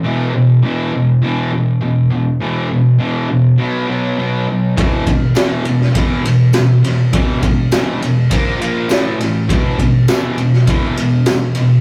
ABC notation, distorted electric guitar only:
X:1
M:4/4
L:1/8
Q:1/4=102
K:Bphr
V:1 name="Distorted electric guitar" clef=bass
[E,,B,,E,] [E,,B,,] [E,,B,,E,] [E,,B,,] [E,,B,,E,] [E,,B,,] [E,,B,,] [E,,B,,] | [E,,B,,E,] [E,,B,,] [E,,B,,E,] [E,,B,,] [B,,F,B,] [B,,F,B,] [B,,F,B,] [B,,F,] | [E,,B,,E,] [E,,B,,] [E,,B,,E,] [E,,B,,] [E,,B,,E,] [E,,B,,] [E,,B,,] [E,,B,,] | [E,,B,,E,] [E,,B,,] [E,,B,,E,] [E,,B,,] [^A,,^E,^A,] [A,,E,A,] [=A,,=E,=A,] [A,,E,] |
[E,,B,,E,] [E,,B,,] [E,,B,,E,] [E,,B,,] [E,,B,,E,] [E,,B,,] [E,,B,,] [E,,B,,] |]